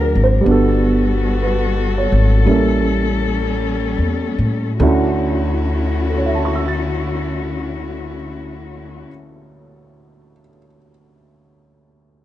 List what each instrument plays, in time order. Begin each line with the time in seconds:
Already playing: upright bass D2, cello section F#3 D4 A#4, grand piano F#3 A#3 C4 F4 F#4 G#4 D5
0.01 grand piano A#4
0.15 upright bass G#1
0.24 grand piano C5
0.41 grand piano G3 B3
0.46 upright bass G1, cello section G3 B3 F#4 A4, grand piano D4 F#4
0.51 grand piano A4
1.43 grand piano B4
1.98 grand piano C#5
2.12 upright bass G#1
2.46 upright bass A1, grand piano G3 A#3 C#4 E4 A4, cello section G3 A#3 C#4
3.98 upright bass E2
4.38 upright bass A2
4.80 grand piano D2 D3 C#4 E4 F#4, upright bass D2, cello section D3 C#4 E4 F#4
6.10 grand piano A4
6.18 grand piano C#5
6.26 grand piano E5
6.35 grand piano A5
6.45 grand piano C#6
6.55 grand piano E6
6.68 grand piano A6